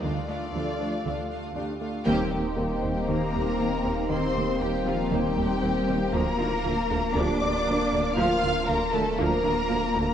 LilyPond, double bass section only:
\new Staff \with { instrumentName = "Double bass section" } { \clef bass \time 4/4 \key ees \lydian \tempo 4 = 118 r1 | ees,8 ees,8 ees,8 ees,8 ees,8 ees,8 ees,8 ees,8 | ees,8 ees,8 ees,8 ees,8 ees,8 ees,8 ees,8 ees,8 | d,8 d,8 d,8 d,8 d,8 d,8 d,8 d,8 |
d,8 d,8 d,8 d,8 d,8 d,8 d,8 d,8 | }